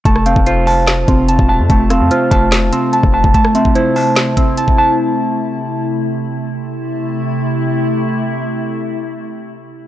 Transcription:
<<
  \new Staff \with { instrumentName = "Synth keys" } { \time 4/4 \key a \minor \tempo 4 = 146 a''8 f''8 c''4. c'8 a''4 | a''8 f''8 c''4. c'8 a''4 | a''8 e''8 c''4. c'8 a''4~ | a''2 r2 |
r1 | r1 | }
  \new Staff \with { instrumentName = "Clean electric guitar" } { \time 4/4 \key a \minor a8 c'8 f'8 a''4 c'4 a''8 | a8 c'8 f'8 a''4 c'4 a''8 | a8 c'8 e'8 a''4 c'4 a''8~ | a''2 r2 |
r1 | r1 | }
  \new Staff \with { instrumentName = "Ambient pad" } { \time 4/4 \key a \minor << { <c f'>1~ | <c f'>1 | <c e'>1~ | <c e'>1 |
<c a e'>1~ | <c a e'>1 | } \\ { a1~ | a1~ | a1~ | a1 |
r1 | r1 | } >> }
  \new Staff \with { instrumentName = "808-style bass" } { \clef bass \time 4/4 \key a \minor f,,8. f,,4.~ f,,16 f,,8. e,,8 f,16 | f,,8. f,16 r8 f,,4 r8. f,,8 f,,16 | r1 | r1 |
r1 | r1 | }
  \new DrumStaff \with { instrumentName = "Drums" } \drummode { \time 4/4 <hh bd>16 ss16 hh16 bd16 hh8 hho8 <hc hh sn>8 <hh bd>8 hh16 bd8. | <hh bd>8 <hh ss>8 hh8 <hh bd>8 <hc hh sn>8 hh8 hh16 bd8 bd16 | <hh bd>16 ss16 hh16 bd16 hh8 hho8 <hc hh sn>8 <hh bd>8 hh16 bd8. | r4 r4 r4 r4 |
r4 r4 r4 r4 | r4 r4 r4 r4 | }
>>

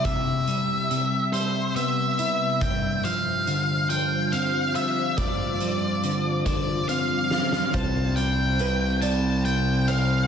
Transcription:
<<
  \new Staff \with { instrumentName = "Lead electric guitar" } { \time 6/8 \key c \major \tempo 4. = 47 e''4. c''8 e''4 | g''8 f''4 g''8 f''8 e''8 | d''4. d''8 f''4 | a''8 g''4 a''8 g''8 f''8 | }
  \new Staff \with { instrumentName = "Felt piano" } { \time 6/8 \key c \major r2. | r2. | r2. | c''4 b'8 d''4 c''8 | }
  \new Staff \with { instrumentName = "Ambient pad" } { \time 6/8 \key c \major << { <c e''>2. | <g c''>2.~ | <g c''>2. | <c g''>2. | } \\ { g2. | f'2. | f'2. | c'2. | } >> }
  \new Staff \with { instrumentName = "Clean electric guitar" } { \clef bass \time 6/8 \key c \major <c g e'>8 g8 c8 g8 b8 e'8 | g,8 f8 d8 f8 c'8 f'8 | g,8 f8 d8 f8 c'8 f'8 | c8 g8 c8 g4. | }
  \new Staff \with { instrumentName = "Fingered electric bass" } { \clef bass \time 6/8 \key c \major r2. | r2. | r2. | c,2. | }
  \new DrumStaff \with { instrumentName = "Drums" } \drummode { \time 6/8 <hh bd>8 hh8 hh8 hh8 hh8 hh8 | <hh bd>8 hh8 hh8 hh8 hh8 hh8 | <hh bd>8 hh8 hh8 <hh bd>8 hh8 sn16 sn16 | <hh bd>8 hh8 hh8 hh8 hh8 hh8 | }
>>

